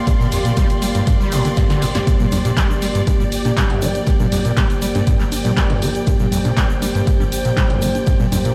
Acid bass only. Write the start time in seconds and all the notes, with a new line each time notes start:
0.07 G2
0.20 A#2
0.32 F2
0.45 A#2
0.57 G3
0.82 G3
0.95 G2
1.07 G2
1.20 G3
1.32 A#2
1.45 D3
1.57 G2
1.70 D3
1.82 G2
1.95 G2
2.07 G2
2.20 A#2
2.32 F2
2.45 A#2
2.57 G3
2.82 G3
2.95 G2
3.07 G2
3.20 G3
3.45 A#2
3.57 G3
3.70 F2
3.82 F3
4.07 G2
4.20 A#2
4.32 F2
4.45 A#2
4.57 G3
4.82 G3
4.95 G2
5.07 G2
5.20 G3
5.45 A#2
5.57 G3
5.70 F2
5.82 F3
6.07 G2
6.20 A#2
6.32 F2
6.45 A#2
6.57 G3
6.82 G3
6.95 G2
7.07 G2
7.20 G3
7.45 A#2
7.57 G3
7.70 F2
7.82 F3
8.07 G2
8.20 A#2
8.32 F2
8.45 A#2